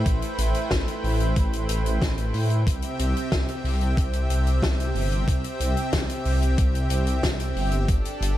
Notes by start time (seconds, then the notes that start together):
Already playing: A3 E4 B4 C5 G5
0.06 A1, kick, closed hi-hat
0.22 closed hi-hat
0.38 A1, closed hi-hat
0.54 closed hi-hat
0.71 A1, kick, snare, closed hi-hat
0.88 closed hi-hat
1.04 A1, open hi-hat
1.20 closed hi-hat
1.36 A1, kick, closed hi-hat
1.53 closed hi-hat
1.69 A1, closed hi-hat
1.86 closed hi-hat
2.02 A1, kick, snare, closed hi-hat
2.18 closed hi-hat
2.34 A2, open hi-hat
2.50 closed hi-hat
2.67 C2 C3 C4 G4 E5 G5, kick, closed hi-hat
2.82 closed hi-hat
2.99 C2, closed hi-hat
3.17 closed hi-hat
3.32 C2, kick, snare, closed hi-hat
3.48 closed hi-hat
3.64 C2, open hi-hat
3.81 closed hi-hat
3.97 C2, kick, closed hi-hat
4.13 closed hi-hat
4.30 C2, closed hi-hat
4.47 closed hi-hat
4.62 C2, kick, snare, closed hi-hat
4.80 closed hi-hat
4.95 G1, open hi-hat
5.12 closed hi-hat
5.28 C2, kick, closed hi-hat
5.44 closed hi-hat
5.60 C2, closed hi-hat
5.77 closed hi-hat
5.92 C2, kick, snare, closed hi-hat
6.09 closed hi-hat
6.25 C2, open hi-hat
6.42 closed hi-hat
6.58 C2, kick, closed hi-hat
6.75 closed hi-hat
6.90 C2, closed hi-hat
7.07 closed hi-hat
7.23 C2, kick, snare, closed hi-hat
7.40 closed hi-hat
7.56 G1, open hi-hat
7.71 closed hi-hat
7.88 G1 D4 A4, kick, closed hi-hat
8.05 closed hi-hat
8.21 G1, closed hi-hat